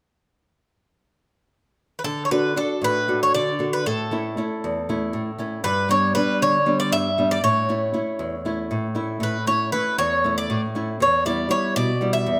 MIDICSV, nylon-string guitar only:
0, 0, Header, 1, 2, 480
1, 0, Start_track
1, 0, Key_signature, 2, "major"
1, 0, Tempo, 511073
1, 240, Time_signature, 7, 3, 24, 8
1, 11644, End_track
2, 0, Start_track
2, 0, Title_t, "Nylon-string guitar"
2, 0, Program_c, 0, 24
2, 1918, Note_on_c, 0, 50, 64
2, 2173, Note_on_c, 0, 62, 42
2, 2173, Note_on_c, 0, 66, 41
2, 2176, Note_on_c, 0, 69, 52
2, 2389, Note_off_c, 0, 50, 0
2, 2396, Note_off_c, 0, 62, 0
2, 2398, Note_off_c, 0, 66, 0
2, 2399, Note_off_c, 0, 69, 0
2, 2406, Note_on_c, 0, 62, 45
2, 2409, Note_on_c, 0, 66, 45
2, 2413, Note_on_c, 0, 69, 54
2, 2644, Note_on_c, 0, 45, 69
2, 2793, Note_off_c, 0, 62, 0
2, 2794, Note_off_c, 0, 66, 0
2, 2795, Note_off_c, 0, 69, 0
2, 2893, Note_on_c, 0, 62, 48
2, 2898, Note_on_c, 0, 66, 43
2, 2901, Note_on_c, 0, 69, 50
2, 3114, Note_off_c, 0, 45, 0
2, 3149, Note_on_c, 0, 50, 59
2, 3278, Note_off_c, 0, 62, 0
2, 3280, Note_off_c, 0, 66, 0
2, 3280, Note_off_c, 0, 69, 0
2, 3371, Note_on_c, 0, 62, 46
2, 3379, Note_on_c, 0, 66, 42
2, 3380, Note_on_c, 0, 69, 47
2, 3564, Note_off_c, 0, 62, 0
2, 3568, Note_off_c, 0, 66, 0
2, 3568, Note_off_c, 0, 69, 0
2, 3607, Note_off_c, 0, 50, 0
2, 3629, Note_on_c, 0, 45, 71
2, 3862, Note_on_c, 0, 57, 47
2, 3869, Note_on_c, 0, 61, 46
2, 3874, Note_on_c, 0, 64, 47
2, 4087, Note_off_c, 0, 45, 0
2, 4094, Note_off_c, 0, 57, 0
2, 4095, Note_off_c, 0, 61, 0
2, 4103, Note_off_c, 0, 64, 0
2, 4104, Note_on_c, 0, 57, 46
2, 4107, Note_on_c, 0, 61, 44
2, 4115, Note_on_c, 0, 64, 52
2, 4358, Note_on_c, 0, 40, 61
2, 4485, Note_off_c, 0, 57, 0
2, 4486, Note_off_c, 0, 61, 0
2, 4491, Note_off_c, 0, 64, 0
2, 4592, Note_on_c, 0, 61, 44
2, 4593, Note_on_c, 0, 57, 48
2, 4600, Note_on_c, 0, 64, 56
2, 4813, Note_off_c, 0, 40, 0
2, 4820, Note_on_c, 0, 45, 58
2, 4969, Note_off_c, 0, 61, 0
2, 4970, Note_off_c, 0, 57, 0
2, 4974, Note_off_c, 0, 64, 0
2, 5057, Note_on_c, 0, 57, 48
2, 5064, Note_on_c, 0, 61, 39
2, 5070, Note_on_c, 0, 64, 52
2, 5249, Note_off_c, 0, 57, 0
2, 5251, Note_off_c, 0, 61, 0
2, 5256, Note_off_c, 0, 64, 0
2, 5284, Note_off_c, 0, 45, 0
2, 5294, Note_on_c, 0, 43, 70
2, 5529, Note_on_c, 0, 55, 43
2, 5533, Note_on_c, 0, 62, 51
2, 5534, Note_on_c, 0, 59, 43
2, 5761, Note_off_c, 0, 43, 0
2, 5769, Note_off_c, 0, 55, 0
2, 5775, Note_off_c, 0, 62, 0
2, 5776, Note_off_c, 0, 59, 0
2, 5780, Note_on_c, 0, 55, 47
2, 5787, Note_on_c, 0, 59, 43
2, 5788, Note_on_c, 0, 62, 58
2, 6027, Note_on_c, 0, 50, 67
2, 6163, Note_off_c, 0, 55, 0
2, 6167, Note_off_c, 0, 59, 0
2, 6167, Note_off_c, 0, 62, 0
2, 6256, Note_on_c, 0, 55, 47
2, 6260, Note_on_c, 0, 59, 43
2, 6260, Note_on_c, 0, 62, 54
2, 6488, Note_off_c, 0, 50, 0
2, 6497, Note_on_c, 0, 43, 57
2, 6640, Note_off_c, 0, 55, 0
2, 6641, Note_off_c, 0, 59, 0
2, 6643, Note_off_c, 0, 62, 0
2, 6744, Note_on_c, 0, 55, 48
2, 6751, Note_on_c, 0, 59, 39
2, 6751, Note_on_c, 0, 62, 46
2, 6933, Note_off_c, 0, 55, 0
2, 6937, Note_off_c, 0, 59, 0
2, 6937, Note_off_c, 0, 62, 0
2, 6962, Note_off_c, 0, 43, 0
2, 6984, Note_on_c, 0, 45, 65
2, 7220, Note_on_c, 0, 57, 47
2, 7226, Note_on_c, 0, 61, 42
2, 7230, Note_on_c, 0, 64, 54
2, 7444, Note_off_c, 0, 57, 0
2, 7444, Note_off_c, 0, 64, 0
2, 7445, Note_off_c, 0, 45, 0
2, 7446, Note_off_c, 0, 61, 0
2, 7453, Note_on_c, 0, 57, 46
2, 7458, Note_on_c, 0, 61, 42
2, 7459, Note_on_c, 0, 64, 47
2, 7694, Note_on_c, 0, 40, 63
2, 7839, Note_off_c, 0, 57, 0
2, 7839, Note_off_c, 0, 64, 0
2, 7840, Note_off_c, 0, 61, 0
2, 7936, Note_on_c, 0, 57, 41
2, 7941, Note_on_c, 0, 61, 41
2, 7945, Note_on_c, 0, 64, 54
2, 8160, Note_off_c, 0, 40, 0
2, 8178, Note_on_c, 0, 45, 59
2, 8320, Note_off_c, 0, 57, 0
2, 8321, Note_off_c, 0, 61, 0
2, 8324, Note_off_c, 0, 64, 0
2, 8403, Note_on_c, 0, 57, 41
2, 8408, Note_on_c, 0, 61, 35
2, 8412, Note_on_c, 0, 64, 49
2, 8630, Note_off_c, 0, 45, 0
2, 8642, Note_on_c, 0, 45, 64
2, 8791, Note_off_c, 0, 57, 0
2, 8794, Note_off_c, 0, 61, 0
2, 8796, Note_off_c, 0, 64, 0
2, 8889, Note_on_c, 0, 57, 50
2, 8899, Note_on_c, 0, 61, 42
2, 8904, Note_on_c, 0, 64, 49
2, 9112, Note_off_c, 0, 45, 0
2, 9125, Note_off_c, 0, 57, 0
2, 9128, Note_off_c, 0, 61, 0
2, 9132, Note_off_c, 0, 64, 0
2, 9136, Note_on_c, 0, 57, 50
2, 9142, Note_on_c, 0, 61, 42
2, 9143, Note_on_c, 0, 64, 50
2, 9375, Note_on_c, 0, 40, 63
2, 9517, Note_off_c, 0, 57, 0
2, 9519, Note_off_c, 0, 61, 0
2, 9522, Note_off_c, 0, 64, 0
2, 9619, Note_on_c, 0, 57, 42
2, 9624, Note_on_c, 0, 61, 40
2, 9634, Note_on_c, 0, 64, 46
2, 9837, Note_off_c, 0, 40, 0
2, 9859, Note_on_c, 0, 45, 67
2, 9998, Note_off_c, 0, 57, 0
2, 10001, Note_off_c, 0, 61, 0
2, 10007, Note_off_c, 0, 64, 0
2, 10096, Note_on_c, 0, 57, 45
2, 10100, Note_on_c, 0, 61, 44
2, 10105, Note_on_c, 0, 64, 51
2, 10284, Note_off_c, 0, 57, 0
2, 10286, Note_off_c, 0, 61, 0
2, 10290, Note_off_c, 0, 64, 0
2, 10318, Note_off_c, 0, 45, 0
2, 10334, Note_on_c, 0, 40, 69
2, 10568, Note_on_c, 0, 55, 47
2, 10572, Note_on_c, 0, 59, 42
2, 10579, Note_on_c, 0, 64, 55
2, 10778, Note_off_c, 0, 55, 0
2, 10786, Note_off_c, 0, 59, 0
2, 10789, Note_off_c, 0, 64, 0
2, 10789, Note_on_c, 0, 55, 51
2, 10794, Note_off_c, 0, 40, 0
2, 10796, Note_on_c, 0, 59, 43
2, 10802, Note_on_c, 0, 64, 53
2, 11048, Note_on_c, 0, 47, 70
2, 11177, Note_off_c, 0, 55, 0
2, 11182, Note_off_c, 0, 59, 0
2, 11184, Note_off_c, 0, 64, 0
2, 11278, Note_on_c, 0, 59, 44
2, 11283, Note_on_c, 0, 55, 50
2, 11289, Note_on_c, 0, 64, 49
2, 11508, Note_off_c, 0, 47, 0
2, 11519, Note_on_c, 0, 40, 65
2, 11644, Note_off_c, 0, 40, 0
2, 11644, Note_off_c, 0, 55, 0
2, 11644, Note_off_c, 0, 59, 0
2, 11644, Note_off_c, 0, 64, 0
2, 11644, End_track
0, 0, End_of_file